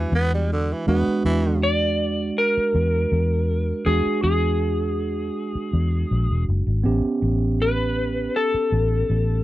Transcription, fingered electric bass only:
0.12 0.72 E2 medium
0.88 1.03 E2 loud
1.07 muted fingered electric bass stroke soft
1.25 2.30 E2 medium
2.57 muted fingered electric bass stroke soft
2.75 3.04 E2 medium
3.12 3.71 E2 medium
3.87 4.02 E2 loud
4.06 muted fingered electric bass stroke soft
4.24 5.29 E2 medium
5.55 muted fingered electric bass stroke soft
5.73 6.03 E2 medium
6.11 6.26 A#1 medium
6.30 6.46 E1 medium
6.49 6.66 F#1 medium
6.67 6.83 G#1 medium
6.85 7.01 A1 loud
7.05 muted fingered electric bass stroke soft
7.22 8.27 A1 medium
8.54 muted fingered electric bass stroke soft
8.72 9.02 A1 medium
9.10 9.44 A1 medium

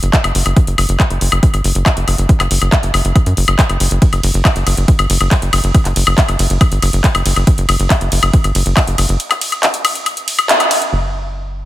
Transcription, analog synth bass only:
0.03 0.10 F#1 loud
0.24 0.32 F#1 medium
0.35 0.43 F#1 loud
0.46 0.53 F#1 loud
0.67 0.75 F#1 medium
0.78 0.86 F#1 loud
0.89 0.97 F#1 medium
1.10 1.18 F#1 medium
1.21 1.29 F#1 loud
1.32 1.40 F#1 medium
1.54 1.61 G1 medium
1.64 1.72 F#1 loud
1.75 1.83 F#1 medium
1.97 2.04 F#1 medium
2.08 2.15 F#1 loud
2.18 2.26 F#1 loud
2.40 2.48 F#1 medium
2.51 2.58 F#1 loud
2.62 2.69 F#1 medium
2.83 2.91 F#1 medium
2.94 3.02 F#1 loud
3.05 3.12 F#1 medium
3.26 3.34 F#2 medium
3.37 3.45 F#1 loud
3.48 3.56 F#1 loud
3.69 3.77 F#1 medium
3.80 3.88 F#1 loud
3.91 3.99 F#1 loud
4.13 4.20 F#1 medium
4.23 4.31 F#1 loud
4.34 4.42 F#1 medium
4.56 4.63 F#1 medium
4.67 4.74 F#1 loud
4.77 4.85 F#1 medium
4.99 5.07 G1 medium
5.10 5.17 F#1 loud
5.21 5.28 F#1 medium
5.42 5.50 F#1 medium
5.53 5.61 F#1 loud
5.64 5.71 F#1 loud
5.85 5.93 F#1 medium
5.96 6.04 F#1 loud
6.07 6.15 F#1 loud
6.28 6.36 F#1 medium
6.39 6.47 F#1 loud
6.50 6.58 F#1 loud
6.72 6.79 G1 medium
6.82 6.90 F#1 loud
6.93 7.01 F#1 medium
7.15 7.22 F#1 medium
7.26 7.33 F#1 loud
7.36 7.44 F#1 loud
7.58 7.66 F#1 medium
7.69 7.76 F#1 loud
7.80 7.87 F#1 loud
8.01 8.09 F#1 medium
8.12 8.20 F#1 loud
8.23 8.30 F#1 medium
8.44 8.52 G1 medium
8.55 8.63 F#1 loud
8.66 8.74 F#1 medium
8.87 8.95 F#1 medium
8.98 9.06 F#1 loud
9.09 9.17 F#1 medium
10.93 11.65 F#1 medium

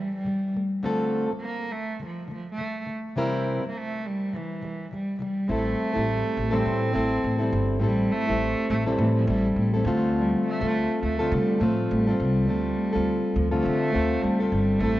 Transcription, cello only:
0.00 0.15 G3 medium
0.16 0.53 G3 medium
1.41 1.74 A#3 medium
1.72 2.01 A3 medium
2.06 2.30 F3 medium
2.34 2.48 F3 medium
2.51 2.87 A3 medium
3.69 3.79 A#3 medium
3.78 4.08 A3 medium
4.06 4.37 G3 medium
4.35 4.92 E3 medium
4.94 5.20 G3 medium
5.21 5.52 G3 medium
5.50 6.56 A3 medium
6.54 7.53 C4 medium
7.85 8.13 G3 medium
8.12 8.69 A3 loud
8.70 8.83 A3 medium
9.00 9.15 E3 medium
9.16 9.27 F3 medium
9.29 9.83 G3 medium
10.18 10.44 G3 medium
10.47 11.00 A3 medium
11.03 11.35 A3 medium
11.34 11.65 G3 medium
11.64 11.94 F3 medium
11.92 12.20 G3 medium
12.22 13.39 G3 medium
13.38 13.65 F3 medium
13.66 14.24 A3 medium
14.22 14.52 G3 medium
14.52 14.81 G3 medium
14.80 15.00 A3 loud

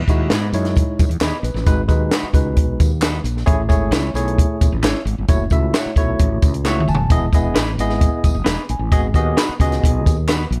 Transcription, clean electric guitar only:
0.31 0.46 B3 medium
0.31 0.46 D#4 medium
0.31 0.46 G#4 medium
0.31 0.46 B4 medium
1.22 1.36 B3 medium
1.22 1.37 D#4 medium
1.22 1.37 G#4 medium
1.22 1.37 B4 medium
2.12 2.27 G#3 medium
2.12 2.27 D#4 medium
2.12 2.27 F#4 medium
2.12 2.28 B4 medium
3.02 3.17 G#3 medium
3.02 3.17 D#4 loud
3.02 3.18 F#4 medium
3.02 3.18 B4 loud
3.92 4.07 C#4 medium
3.92 4.08 E4 medium
3.92 4.08 G#4 medium
3.92 4.09 C#5 medium
4.83 4.98 C#4 medium
4.83 4.99 E4 medium
4.83 4.99 G#4 medium
4.83 4.99 C#5 medium
5.74 5.89 A3 medium
5.74 5.89 E4 medium
5.74 5.90 F#4 medium
5.74 5.90 C#5 medium
6.65 6.80 A3 medium
6.65 6.80 E4 medium
6.65 6.81 F#4 medium
6.65 6.81 C#5 medium
7.55 7.70 B3 medium
7.55 7.71 D#4 medium
7.55 7.71 G#4 medium
7.55 7.71 B4 medium
8.44 8.60 B3 medium
8.44 8.61 D#4 loud
8.44 8.61 G#4 medium
8.44 8.61 B4 loud
9.37 9.52 B3 medium
9.37 9.52 D#4 medium
9.37 9.53 F#4 medium
9.37 9.53 B4 loud
10.28 10.43 B3 medium
10.28 10.43 D#4 medium
10.28 10.44 F#4 medium
10.28 10.44 B4 medium

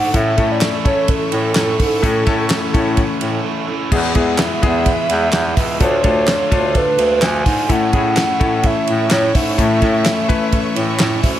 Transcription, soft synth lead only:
0.00 0.18 F#5 loud
0.16 0.53 E5 loud
0.52 0.86 D5 loud
0.87 1.08 C#5 medium
1.10 3.41 A4 loud
3.94 5.78 E5 loud
5.82 6.79 C#5 loud
6.77 7.26 B4 loud
7.24 7.73 G#5 loud
7.72 8.67 F#5 loud
8.66 9.12 E5 loud
9.12 9.37 C#5 medium
9.35 11.24 E5 loud

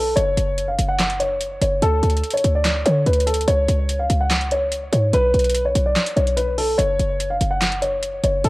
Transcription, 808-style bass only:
0.00 0.14 B1 loud
0.17 0.37 F#1 loud
0.37 0.77 F#1 loud
0.79 1.58 F#1 loud
1.62 1.81 F#1 loud
1.82 2.02 D2 loud
2.03 2.23 D2 loud
2.44 2.84 D2 loud
2.86 3.06 D3 loud
3.06 3.46 D2 loud
3.48 3.68 C#2 loud
3.68 4.08 C#2 loud
4.10 4.89 C#2 loud
4.93 5.12 G#2 loud
5.13 5.33 B1 loud
5.34 5.74 B1 loud
5.75 5.95 B1 loud
6.17 6.76 B1 loud
6.79 6.99 F#1 loud
7.00 7.39 F#1 loud
7.41 8.20 F#1 loud
8.24 8.43 F#1 loud
8.44 8.49 D2 loud

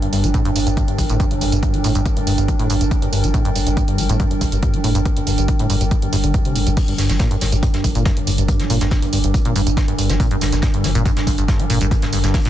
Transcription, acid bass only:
0.02 0.08 G2 medium
0.13 0.25 G2 medium
0.24 0.29 G3 loud
0.34 0.43 A2 loud
0.45 0.51 G2 loud
0.56 0.59 G2 medium
0.67 0.70 G2 medium
0.77 0.83 G2 medium
0.88 1.00 G2 medium
0.98 1.05 G3 loud
1.10 1.18 A2 loud
1.20 1.26 G2 loud
1.31 1.34 G2 medium
1.41 1.45 G2 medium
1.52 1.58 G2 medium
1.63 1.75 G2 medium
1.74 1.79 G3 loud
1.84 1.93 A2 loud
1.95 2.01 G2 loud
2.05 2.09 G2 medium
2.17 2.20 G2 medium
2.27 2.33 G2 medium
2.38 2.50 G2 medium
2.48 2.54 G3 loud
2.59 2.68 A2 loud
2.70 2.76 G2 loud
2.81 2.84 G2 medium
2.91 2.95 G2 medium
3.02 3.08 G2 medium
3.13 3.25 G2 medium
3.24 3.29 G3 loud
3.34 3.43 A2 loud
3.45 3.51 G2 loud
3.55 3.59 G2 medium
3.67 3.70 G2 medium
3.77 3.83 G2 medium
3.88 4.00 G2 medium
3.98 4.04 G3 loud
4.09 4.18 A2 loud
4.20 4.26 G2 loud
4.31 4.34 G2 medium
4.41 4.45 G2 medium
4.52 4.58 G2 medium
4.63 4.75 G2 medium
4.74 4.79 G3 loud
4.84 4.93 A2 loud
4.95 5.01 G2 loud
5.06 5.09 G2 medium
5.17 5.20 G2 medium
5.27 5.33 G2 medium
5.38 5.50 G2 medium
5.48 5.55 G3 loud
5.59 5.68 A2 loud
5.70 5.76 G2 loud
5.81 5.84 G2 medium
5.91 5.95 G2 medium
6.02 6.08 G2 medium
6.13 6.16 G2 loud
6.24 6.32 D3 medium
6.34 6.40 G2 medium
6.45 6.57 C3 medium
6.56 6.62 G2 loud
6.67 6.70 G2 medium
6.77 6.81 G2 medium
6.88 6.94 G2 medium
6.98 7.11 G2 medium
7.10 7.15 G3 loud
7.20 7.29 A#2 loud
7.31 7.37 G2 loud
7.41 7.45 G2 medium
7.52 7.56 G2 medium
7.63 7.69 G2 medium
7.74 7.86 G2 medium
7.84 7.90 G3 loud
7.95 8.04 A#2 loud
8.06 8.12 G2 loud
8.17 8.20 G2 medium
8.27 8.31 G2 medium
8.38 8.44 G2 medium
8.49 8.61 G2 medium
8.60 8.65 G3 loud
8.70 8.79 A#2 loud
8.81 8.87 G2 loud
8.91 8.95 G2 medium
9.02 9.06 G2 medium
9.13 9.19 G2 medium
9.24 9.35 G2 medium
9.34 9.40 G3 loud
9.45 9.54 A#2 loud
9.55 9.62 G2 loud
9.67 9.70 G2 medium
9.77 9.81 G2 medium
9.88 9.94 G2 medium
9.98 10.11 G2 medium
10.09 10.15 G3 loud
10.20 10.29 A#2 loud
10.31 10.37 G2 loud
10.41 10.45 G2 medium
10.52 10.56 G2 medium
10.63 10.69 G2 medium
10.74 10.86 G2 medium
10.84 10.90 G3 loud
10.95 11.04 A#2 loud
11.06 11.12 G2 loud
11.17 11.20 G2 medium
11.27 11.31 G2 medium
11.38 11.44 G2 medium
11.48 11.61 G2 medium
11.59 11.65 G3 loud
11.70 11.79 A#2 loud
11.81 11.87 G2 loud
11.91 11.95 G2 medium
12.02 12.06 G2 medium
12.13 12.19 G2 medium
12.24 12.36 G2 medium
12.34 12.40 G3 loud
12.45 12.50 A#2 loud

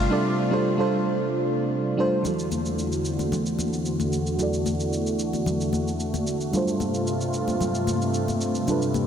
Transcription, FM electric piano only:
0.00 0.10 G3 medium
0.00 0.11 D4 medium
0.00 0.11 F4 medium
0.00 0.12 A4 medium
0.00 0.53 C5 loud
0.00 0.13 D5 loud
0.10 0.43 G3 medium
0.10 0.43 D4 medium
0.10 0.43 F4 medium
0.10 0.44 A4 medium
0.10 0.44 D5 loud
0.51 0.72 G3 medium
0.51 0.73 D4 medium
0.51 0.73 F4 medium
0.51 0.73 A4 medium
0.51 0.74 C5 loud
0.77 1.63 G3 medium
0.77 1.64 D4 medium
0.77 1.64 F4 medium
0.77 1.64 A4 medium
0.77 1.65 C5 loud
1.97 2.19 G3 medium
1.97 2.20 D4 medium
1.97 2.20 F4 medium
1.97 2.20 A4 medium
1.97 2.21 C5 loud
2.23 4.34 E3 medium
2.23 4.35 E4 medium
2.23 4.36 F#4 medium
2.27 4.36 A4 medium
2.27 4.37 D5 medium
4.37 6.48 E3 medium
4.37 6.49 E4 medium
4.37 6.50 F#4 medium
4.41 6.51 A4 medium
4.41 6.51 D5 medium
6.51 8.63 G3 medium
6.51 8.63 D4 medium
6.51 8.64 F4 medium
6.56 8.65 A4 medium
6.56 8.66 C5 medium
8.66 9.07 G3 medium
8.66 9.07 D4 medium
8.66 9.07 F4 medium
8.70 9.07 A4 medium
8.70 9.07 B4 medium

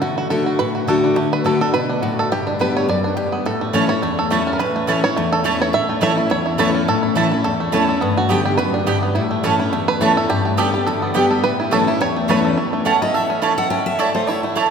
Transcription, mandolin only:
3.73 3.84 A3 medium
3.73 3.84 E4 medium
3.73 3.84 C#5 loud
3.73 3.84 A5 medium
4.31 4.41 A3 medium
4.31 4.41 E4 medium
4.31 4.41 C#5 medium
4.31 4.42 A5 medium
4.87 4.98 A3 medium
4.87 4.98 E4 medium
4.87 4.98 C#5 medium
4.87 4.98 A5 loud
5.44 5.55 A3 medium
5.44 5.55 E4 medium
5.44 5.55 C#5 medium
5.44 5.55 A5 loud
6.01 6.12 A3 medium
6.01 6.12 E4 medium
6.01 6.12 C#5 medium
6.01 6.12 A5 loud
6.58 6.69 A3 medium
6.58 6.69 E4 medium
6.58 6.69 C#5 loud
6.58 6.69 A5 loud
7.15 7.26 A3 medium
7.15 7.26 E4 medium
7.15 7.26 C#5 loud
7.15 7.27 A5 loud
7.72 7.83 A3 medium
7.72 7.83 E4 medium
7.72 7.83 C#5 medium
7.72 7.83 A5 loud
8.29 8.40 B3 medium
8.29 8.40 G4 medium
8.29 8.40 D5 medium
8.29 8.40 G5 loud
8.87 8.97 B3 medium
8.87 8.97 G4 medium
8.87 8.97 D5 medium
8.87 8.98 G5 medium
9.44 9.54 A3 medium
9.44 9.54 E4 medium
9.44 9.54 C#5 medium
9.44 9.55 A5 loud
10.01 10.11 A3 medium
10.01 10.11 E4 medium
10.01 10.11 C#5 medium
10.01 10.12 A5 loud
10.58 10.68 B3 medium
10.58 10.68 G4 medium
10.58 10.68 D5 loud
10.58 10.68 G5 loud
11.14 11.24 B3 medium
11.14 11.25 G4 medium
11.14 11.25 D5 medium
11.14 11.25 G5 medium
11.71 11.81 A3 medium
11.71 11.82 E4 medium
11.71 11.82 C#5 loud
11.71 11.82 A5 medium
12.28 12.38 A3 medium
12.28 12.39 E4 medium
12.28 12.39 C#5 medium
12.28 12.39 A5 medium
12.85 12.95 A3 medium
12.85 12.96 E4 medium
12.85 12.96 C#5 loud
12.85 12.96 A5 loud
13.42 13.52 A3 medium
13.42 13.52 E4 medium
13.42 13.53 C#5 medium
13.42 13.53 A5 medium
13.99 14.09 A3 medium
13.99 14.09 E4 medium
13.99 14.10 C#5 medium
13.99 14.10 A5 loud
14.56 14.66 A3 medium
14.56 14.66 E4 medium
14.56 14.66 C#5 loud
14.56 14.67 A5 medium

